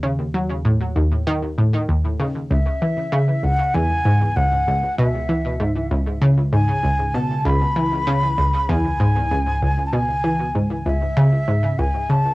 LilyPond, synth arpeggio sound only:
\new Staff \with { instrumentName = "Synth arpeggio sound" } { \clef bass \time 4/4 \key cis \minor \tempo 4 = 97 cis8 fis16 r16 a,8 dis,16 r16 dis8 a,16 r16 dis,8 cis16 r16 | cis,16 r16 e8 cis16 r16 cis,16 r16 e,16 r16 gis,16 r16 cis,8 cis,8 | b,8 e16 r16 gis,8 cis,16 r16 cis8 gis,16 r16 cis,8 b,16 r16 | cis,16 r16 e8 cis16 r16 cis,16 r16 e,16 r16 gis,16 r16 cis,8 cis,8 |
b,8 e16 r16 gis,8 cis,16 r16 cis8 gis,16 r16 cis,8 cis16 r16 | }